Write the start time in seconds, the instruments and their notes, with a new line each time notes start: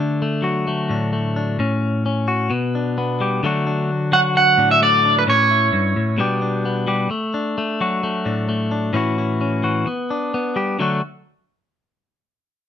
Already playing: clean electric guitar D3 A3
0.00 clean electric guitar D4
0.22 clean electric guitar A3
0.42 clean electric guitar F#3 F#4
0.67 clean electric guitar A3
0.89 clean electric guitar A2 D4
1.13 clean electric guitar A3
1.36 clean electric guitar D4
1.59 clean electric guitar A2 C#4
2.06 clean electric guitar C#4
2.28 clean electric guitar F#4
2.50 clean electric guitar B2 B3
2.75 clean electric guitar D4
2.98 clean electric guitar B3
3.20 clean electric guitar G3 G4
3.43 clean electric guitar D3 F#3 A3 D4 F#4
3.67 clean electric guitar D4
4.12 clean electric guitar F#3 F#4 F#5
4.35 clean electric guitar F#5, muted clean electric guitar stroke
4.57 clean electric guitar A2 D4
4.71 clean electric guitar E5
4.82 clean electric guitar A3 D5
5.05 clean electric guitar D4
5.19 clean electric guitar B4
5.27 clean electric guitar A2 C#4 C#5
5.51 clean electric guitar E4
5.73 clean electric guitar G2
5.96 clean electric guitar A2
6.18 clean electric guitar B2 G3 B3 D4 G4
6.42 clean electric guitar D4
6.65 clean electric guitar B3
6.87 clean electric guitar G3 G4
7.10 clean electric guitar A3, muted clean electric guitar stroke
7.34 clean electric guitar D4
7.58 clean electric guitar A3
7.81 clean electric guitar F#3 F#4
8.03 clean electric guitar A3
8.25 clean electric guitar A2 D4
8.49 clean electric guitar A3
8.71 clean electric guitar D4
8.93 clean electric guitar A2 E3 C#4 E4 F#4
9.18 clean electric guitar E4
9.41 clean electric guitar C#4
9.63 clean electric guitar E3 F#4
9.86 clean electric guitar B3, muted clean electric guitar stroke
10.10 clean electric guitar D4
10.34 clean electric guitar B3
10.56 clean electric guitar G3 G4
10.79 clean electric guitar D3 F#3 A3 D4 F#4